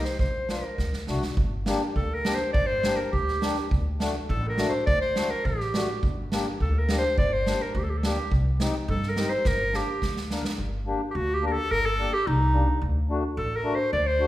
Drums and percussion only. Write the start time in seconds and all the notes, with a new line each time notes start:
0.05 snare
0.19 kick, snare
0.49 snare
0.78 kick, snare
0.93 snare
1.07 snare
1.22 snare
1.37 kick
1.66 snare
1.96 kick
2.25 snare
2.54 kick
2.83 snare
3.13 kick
3.28 snare
3.42 snare
3.56 snare
3.71 kick
4.00 snare
4.29 kick
4.58 snare
4.87 kick
5.16 snare
5.45 kick
5.60 snare
5.74 snare
6.03 kick
6.32 snare
6.60 kick
6.89 snare
7.18 kick
7.46 snare
7.75 kick
8.03 snare
8.32 kick
8.60 snare
8.88 kick
9.03 snare
9.17 snare
9.45 kick, snare
9.74 snare
10.02 kick, snare
10.17 snare
10.30 snare
10.45 snare